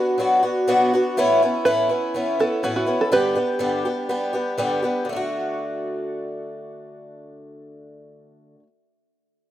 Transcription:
0.00 0.18 B3 soft
0.00 0.18 D4 soft
0.00 0.18 F#4 soft
0.00 0.13 G4 medium
0.00 0.15 B4 medium
0.18 0.42 F#3 medium
0.18 0.43 B3 medium
0.18 0.42 D4 medium
0.18 0.41 F#4 medium
0.43 0.67 B3 soft
0.43 0.67 D4 medium
0.43 0.67 F#4 medium
0.67 0.92 B2 medium
0.67 0.92 F#3 medium
0.67 0.92 B3 medium
0.67 0.92 D4 medium
0.67 0.92 F#4 medium
0.93 1.17 B3 soft
0.93 1.18 D4 medium
0.93 1.17 F#4 medium
1.17 1.41 A2 medium
1.17 1.41 E3 medium
1.17 1.42 B3 medium
1.17 1.42 C#4 medium
1.17 1.41 E4 medium
1.43 1.65 B3 soft
1.43 1.65 C#4 soft
1.43 1.65 E4 medium
1.65 1.90 A2 medium
1.65 1.90 E3 medium
1.65 1.90 B3 medium
1.65 1.90 C#4 medium
1.65 1.88 E4 medium
1.65 2.36 B4 loud
1.89 2.14 B3 soft
1.89 2.15 C#4 soft
1.89 2.14 E4 soft
2.14 2.39 E3 medium
2.14 2.39 B3 medium
2.14 2.39 C#4 medium
2.14 2.38 E4 medium
2.39 2.63 B3 soft
2.39 2.63 C#4 soft
2.39 2.64 E4 medium
2.39 2.63 A4 medium
2.63 2.88 A2 medium
2.63 2.88 E3 medium
2.63 2.87 B3 medium
2.63 2.86 C#4 medium
2.63 2.85 E4 medium
2.63 2.75 F#4 medium
2.76 3.00 F#4 medium
2.86 3.11 B3 soft
2.86 3.12 C#4 soft
2.86 3.12 E4 soft
3.01 3.12 A4 medium
3.12 3.36 G2 medium
3.12 3.37 D3 medium
3.12 3.36 G3 medium
3.12 3.35 B3 medium
3.12 3.35 D4 medium
3.12 4.07 G4 medium
3.12 3.34 G4 medium
3.12 4.08 B4 medium
3.35 3.59 G3 soft
3.35 3.59 B3 soft
3.35 3.59 D4 soft
3.35 3.59 G4 soft
3.59 3.85 G2 medium
3.59 3.85 D3 medium
3.59 3.85 G3 medium
3.59 3.85 B3 medium
3.59 3.84 D4 medium
3.59 3.84 G4 medium
3.85 4.08 G3 soft
3.85 4.08 B3 soft
3.85 4.09 D4 soft
3.85 4.09 G4 soft
4.09 4.34 G3 medium
4.09 4.33 B3 medium
4.09 4.33 D4 medium
4.09 4.32 G4 medium
4.33 4.57 G3 soft
4.33 4.57 B3 soft
4.33 4.58 D4 soft
4.33 4.58 G4 medium
4.58 4.83 G2 medium
4.58 4.83 D3 medium
4.58 4.84 G3 medium
4.58 4.83 B3 medium
4.58 4.83 D4 medium
4.58 4.81 G4 medium
4.83 5.04 G3 soft
4.83 5.09 B3 soft
4.83 5.09 D4 soft
4.83 5.08 G4 medium
5.05 8.55 D3 medium
5.09 8.59 A3 medium
5.09 8.63 D4 medium
5.16 8.66 F#4 medium

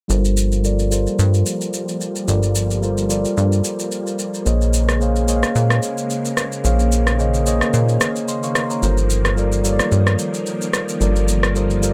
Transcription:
0.08 1.08 G1 loud
0.08 4.42 F3 medium
0.08 0.54 G3 medium
0.08 4.42 G3 medium
0.08 11.93 A#3 medium
0.08 0.54 F4 medium
0.08 0.55 A4 medium
0.08 0.55 A#4 medium
0.08 0.55 C5 medium
0.08 shaker medium
0.25 shaker medium
0.37 shaker loud
0.52 shaker soft
0.63 0.86 G3 medium
0.63 0.86 F4 medium
0.63 0.87 A4 medium
0.63 0.87 A#4 medium
0.63 0.88 D5 medium
0.63 shaker medium
0.79 shaker soft
0.90 1.79 G3 medium
0.90 1.79 F4 medium
0.90 1.80 A4 medium
0.90 1.80 A#4 medium
0.90 1.80 C5 medium
0.90 shaker loud
1.07 shaker medium
1.19 1.43 G2 loud
1.19 shaker medium
1.34 shaker soft
1.46 shaker medium
1.61 shaker medium
1.73 shaker medium
1.89 shaker medium
2.01 shaker medium
2.16 shaker medium
2.27 3.26 G1 loud
2.27 2.72 G3 medium
2.27 2.73 F4 medium
2.27 2.73 A4 medium
2.27 2.73 A#4 medium
2.27 2.74 D5 medium
2.27 shaker medium
2.43 shaker medium
2.55 shaker loud
2.71 shaker medium
2.81 3.04 G3 medium
2.81 3.05 F4 medium
2.81 3.05 A4 medium
2.81 3.05 A#4 medium
2.81 3.06 C5 medium
2.81 shaker medium
2.98 shaker soft
3.08 3.97 G3 medium
3.08 3.97 F4 medium
3.08 3.98 A4 medium
3.08 3.98 A#4 medium
3.08 3.99 D5 medium
3.08 shaker medium
3.25 shaker medium
3.37 3.62 G2 loud
3.37 shaker medium
3.52 shaker soft
3.64 shaker medium
3.79 shaker medium
3.92 shaker medium
4.07 shaker medium
4.19 shaker medium
4.34 shaker medium
4.45 5.44 A#1 loud
4.45 8.79 C#3 medium
4.45 6.62 G#3 medium
4.45 4.90 A#3 medium
4.45 4.91 G#4 medium
4.45 4.91 C5 medium
4.45 4.91 C#5 medium
4.45 4.92 D#5 medium
4.45 shaker medium
4.61 shaker medium
4.74 shaker loud
4.89 cross-stick medium
4.89 shaker soft
5.00 5.23 A#3 medium
5.00 5.23 G#4 medium
5.00 5.23 C5 medium
5.00 5.24 C#5 medium
5.00 5.24 F5 medium
5.00 shaker medium
5.16 shaker soft
5.27 6.15 A#3 medium
5.27 6.16 G#4 medium
5.27 6.16 C5 medium
5.27 6.16 C#5 medium
5.27 5.36 D#5 medium
5.27 shaker loud
5.36 6.20 F5 medium
5.43 cross-stick medium
5.43 shaker medium
5.56 5.80 A#2 loud
5.56 shaker medium
5.70 cross-stick medium
5.70 shaker soft
5.83 shaker medium
5.98 shaker medium
6.10 shaker medium
6.25 shaker medium
6.37 cross-stick medium
6.37 shaker medium
6.52 shaker medium
6.63 7.62 A#1 loud
6.63 11.93 D#3 medium
6.63 7.09 A#3 medium
6.63 7.09 G#4 medium
6.63 7.09 C5 medium
6.63 7.10 C#5 medium
6.63 7.10 F5 medium
6.63 shaker medium
6.79 shaker medium
6.92 shaker loud
7.07 cross-stick medium
7.07 shaker medium
7.18 7.41 A#3 medium
7.18 7.41 G#4 medium
7.18 7.41 C5 medium
7.18 7.42 C#5 medium
7.18 7.42 D#5 medium
7.18 shaker medium
7.34 shaker soft
7.45 8.33 A#3 medium
7.45 8.34 G#4 medium
7.45 8.28 C5 medium
7.45 8.29 C#5 medium
7.45 8.28 D#5 loud
7.45 shaker medium
7.61 cross-stick medium
7.61 shaker medium
7.74 7.98 A#2 loud
7.74 shaker medium
7.89 shaker soft
8.01 cross-stick loud
8.01 shaker medium
8.16 shaker medium
8.28 8.43 D#5 medium
8.28 8.42 C6 medium
8.28 shaker medium
8.43 8.55 F5 medium
8.43 8.55 C#6 medium
8.43 shaker medium
8.55 8.70 D#5 medium
8.55 8.70 C6 medium
8.55 cross-stick medium
8.55 shaker medium
8.70 8.97 C#5 medium
8.70 8.96 A#5 medium
8.70 shaker medium
8.81 9.80 G1 loud
8.81 11.93 F3 medium
8.81 9.27 G3 medium
8.81 9.27 F4 medium
8.81 9.28 A4 medium
8.81 9.28 A#4 medium
8.81 9.28 C5 medium
8.81 shaker medium
8.98 shaker medium
9.10 shaker loud
9.25 cross-stick medium
9.25 shaker soft
9.36 9.59 G3 medium
9.36 9.59 F4 medium
9.36 9.60 A4 medium
9.36 9.60 A#4 medium
9.36 9.60 D5 medium
9.36 shaker medium
9.52 shaker medium
9.63 10.52 G3 medium
9.63 10.52 F4 medium
9.63 10.52 A4 medium
9.63 10.53 A#4 medium
9.63 9.72 C#5 medium
9.63 shaker loud
9.73 10.56 D5 medium
9.79 cross-stick medium
9.79 shaker medium
9.92 10.16 G2 loud
9.92 shaker medium
10.07 cross-stick medium
10.07 shaker soft
10.19 shaker medium
10.34 shaker medium
10.46 shaker medium
10.61 shaker medium
10.73 cross-stick medium
10.73 shaker medium
10.89 shaker medium
11.00 11.93 G1 loud
11.00 11.45 G3 medium
11.00 11.45 F4 medium
11.00 11.46 A4 medium
11.00 11.46 A#4 medium
11.00 11.46 D5 medium
11.00 shaker medium
11.16 shaker medium
11.28 shaker loud
11.43 cross-stick medium
11.43 shaker soft
11.54 11.77 G3 medium
11.54 11.77 F4 medium
11.54 11.78 A4 medium
11.54 11.78 A#4 medium
11.54 11.79 C5 medium
11.54 shaker medium
11.70 shaker soft
11.81 11.93 G3 medium
11.81 11.93 F4 medium
11.81 11.93 A4 medium
11.81 11.93 A#4 medium
11.81 11.91 C5 medium
11.81 shaker loud

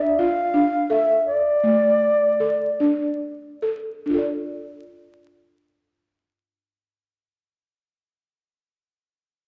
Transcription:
0.01 0.20 E5 medium
0.18 0.38 F4 medium
0.18 0.92 F5 medium
0.54 0.74 D4 medium
0.90 1.30 A4 medium
0.90 1.26 E5 medium
1.26 3.17 D5 medium
1.63 2.06 A3 medium
2.40 2.62 A4 medium
2.80 3.26 D4 medium
3.62 3.87 A4 medium
4.06 8.62 D4 soft
4.10 8.64 F4 soft
4.14 8.66 A4 soft
4.18 8.68 D5 soft

